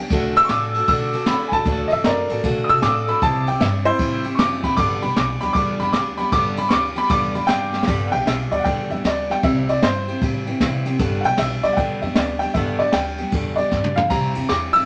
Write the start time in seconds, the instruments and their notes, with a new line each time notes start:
Already playing: steel-string acoustic guitar G4
0.00 steel-string acoustic guitar G3 B3 D4
0.10 upright bass D2, steel-string acoustic guitar D3 A3 D4 F#4 A4, kick, ride
0.36 steel-string acoustic guitar D4 F#4 A4, upright piano E6, ride
0.45 upright piano C#6
0.49 upright bass A2, steel-string acoustic guitar A3 D4 F#4 A4, upright piano D6, snare, ride
0.74 steel-string acoustic guitar F#4 A4, ride
0.79 steel-string acoustic guitar D4
0.88 upright bass B2, steel-string acoustic guitar D3 A3 D4 F#4 A4, upright piano E6, kick, ride
1.13 steel-string acoustic guitar D4 F#4 A4, ride
1.26 upright bass D3, steel-string acoustic guitar A3 D4, upright piano B5, snare, ride
1.30 steel-string acoustic guitar F#4 A4
1.48 upright piano G#5
1.52 steel-string acoustic guitar D4 F#4 A4, upright piano A5, kick, ride
1.65 upright bass D2, steel-string acoustic guitar D3 A3 D4 F#4 A4, kick, ride
1.88 steel-string acoustic guitar A4, upright piano D#5, ride
1.92 upright bass F#2, steel-string acoustic guitar D4 F#4, upright piano E5
2.04 upright bass F#2, steel-string acoustic guitar A3 D4 F#4 A4, upright piano A#4 D5, snare, ride
2.29 upright bass A2, steel-string acoustic guitar D4 F#4 A4, snare, ride
2.43 upright bass B2, steel-string acoustic guitar D3 A3 D4 F#4 A4, kick, ride
2.64 upright piano D#6
2.68 upright bass C3, steel-string acoustic guitar D4 F#4 A4, upright piano E6, ride
2.82 upright bass A2, steel-string acoustic guitar A3 D4 F#4 A4, upright piano D6, snare, ride
3.07 steel-string acoustic guitar D4 F#4 A4, upright piano B5, ride
3.22 upright bass C2, steel-string acoustic guitar C3 G3 C4 E4 G4, upright piano A5, kick, ride
3.47 steel-string acoustic guitar C4 E4 G4, upright piano G5, ride
3.60 upright bass G2, steel-string acoustic guitar G3 C4 E4 G4, upright piano E5, snare, ride
3.85 steel-string acoustic guitar C4 E4 G4, upright piano E4 C5, ride
3.99 upright bass A2, steel-string acoustic guitar C3 G3 C4 E4 G4, kick, ride
4.24 steel-string acoustic guitar C4 E4 G4, ride
4.35 upright bass F#1, upright piano C#6, snare, ride
4.39 steel-string acoustic guitar G3 C4 E4 G4, upright piano D6
4.63 steel-string acoustic guitar C4 E4 G4, upright piano B5, kick, ride
4.77 upright bass G1, steel-string acoustic guitar G2 D3 G3 B3 D4 G4, upright piano D6, kick, ride
5.02 upright bass B1, steel-string acoustic guitar G3 B3 D4 G4, upright piano B5, ride
5.16 upright bass B1, steel-string acoustic guitar G3 B3 D4 G4, upright piano D6, snare, ride
5.41 upright bass D2, steel-string acoustic guitar B3 D4 G4, upright piano B5, snare, ride
5.45 steel-string acoustic guitar G3
5.53 upright bass E2, steel-string acoustic guitar G2 D3 G3 B3, upright piano D6, kick, ride
5.57 steel-string acoustic guitar D4 G4
5.80 upright bass F2, steel-string acoustic guitar G3 B3 D4 G4, upright piano B5, ride
5.93 upright bass D2, steel-string acoustic guitar G3 B3 D4 G4, upright piano D6, snare, ride
6.17 steel-string acoustic guitar G3 B3 D4 G4, upright piano B5, ride
6.32 upright bass G1, steel-string acoustic guitar G2 D3 G3 B3 D4 G4, upright piano D6, kick, ride
6.57 steel-string acoustic guitar G3 B3 D4 G4, upright piano B5, ride
6.69 upright bass D2, steel-string acoustic guitar G3 B3, upright piano C#6, snare, ride
6.73 steel-string acoustic guitar D4 G4, upright piano D6
6.95 steel-string acoustic guitar G3 B3 D4 G4, upright piano B5, ride
7.09 upright bass E2, steel-string acoustic guitar G2 D3 G3 B3 D4 G4, upright piano D6, kick, ride
7.35 steel-string acoustic guitar G3 B3 D4 G4, upright piano B5, ride
7.47 upright bass G2, steel-string acoustic guitar G3 B3 D4 G4, upright piano G5, snare, ride
7.73 steel-string acoustic guitar G3 B3 D4 G4, snare
7.83 snare
7.87 upright bass G1, steel-string acoustic guitar G2 D3 G3 B3 D4 G4, kick, crash
8.07 upright piano F#5
8.11 upright bass B1, steel-string acoustic guitar G3 B3 D4 G4, upright piano G5, ride
8.26 upright bass B1, steel-string acoustic guitar G3 B3 D4 G4, upright piano E5, snare, ride
8.51 upright bass D2, steel-string acoustic guitar G3 B3 D4 G4, upright piano D5, ride
8.60 upright piano F#5
8.64 upright bass E2, steel-string acoustic guitar G2 D3 G3 B3 D4 G4, upright piano G5, kick, ride
8.90 upright bass F2, steel-string acoustic guitar G3 B3 D4 G4, upright piano E5, ride
9.04 upright bass D2, steel-string acoustic guitar G3 B3 D4 G4, upright piano D5, snare, ride
9.30 steel-string acoustic guitar G3 B3 D4 G4, upright piano G5, snare, ride
9.43 upright bass C2, steel-string acoustic guitar C3 G3 C4 E4 G4, upright piano E5, kick, ride
9.69 steel-string acoustic guitar C4 E4 G4, upright piano D5, ride
9.82 upright bass G2, steel-string acoustic guitar G3 C4 E4, upright piano C5, snare, ride
10.08 steel-string acoustic guitar C4 E4 G4, ride
10.22 upright bass A2, steel-string acoustic guitar C3 G3 C4 E4 G4, kick, ride
10.46 steel-string acoustic guitar C4 E4 G4, ride
10.60 upright bass C3, steel-string acoustic guitar G3 C4 E4 G4, kick, snare, ride
10.85 steel-string acoustic guitar C4 E4 G4, snare, ride
10.99 upright bass G1, steel-string acoustic guitar G2 D3 G3 B3 D4 G4, kick, ride
11.21 upright bass B1, upright piano F#5, ride
11.25 steel-string acoustic guitar G3 B3 D4 G4, upright piano G5
11.38 upright bass B1, steel-string acoustic guitar G3 B3 D4 G4, upright piano E5, snare, ride
11.63 upright bass D2, steel-string acoustic guitar G3 B3 D4 G4, upright piano D5, ride
11.73 upright piano F#5 G5
11.77 upright bass E2, steel-string acoustic guitar G2 D3 G3 B3 D4 G4, kick, ride
12.02 upright bass F2, steel-string acoustic guitar B3 D4 G4, upright piano E5, ride
12.06 steel-string acoustic guitar G3
12.15 upright bass D2, steel-string acoustic guitar G3 B3 D4 G4, upright piano D5, snare, ride
12.39 steel-string acoustic guitar B3 D4 G4, upright piano G5, ride
12.44 steel-string acoustic guitar G3
12.54 upright bass G1, steel-string acoustic guitar G2 D3 G3 B3 D4 G4, upright piano E5, kick, ride
12.79 steel-string acoustic guitar B3 D4 G4, upright piano D5, ride
12.83 steel-string acoustic guitar G3
12.92 upright bass D2, steel-string acoustic guitar G3 B3 D4 G4, upright piano G5, snare, ride
13.18 steel-string acoustic guitar G3 B3 D4 G4, ride
13.32 upright bass E2, steel-string acoustic guitar G2 D3 G3 B3 D4 G4, kick, ride
13.56 steel-string acoustic guitar B3 D4 G4, upright piano D5, ride
13.60 steel-string acoustic guitar G3
13.71 upright bass G2, steel-string acoustic guitar G3 B3 D4 G4, kick, snare
13.84 mid tom
13.96 steel-string acoustic guitar G3 B3 D4 G4, upright piano F5, floor tom
14.10 upright bass C2, steel-string acoustic guitar C3 G3 C4 E4 G4, upright piano A#5, kick, ride
14.35 upright bass E2, steel-string acoustic guitar C4 E4 G4, ride
14.49 upright bass E2, steel-string acoustic guitar G3 C4 E4 G4, upright piano D6, snare, ride
14.73 upright bass G2, steel-string acoustic guitar C4 E4 G4, upright piano E6, ride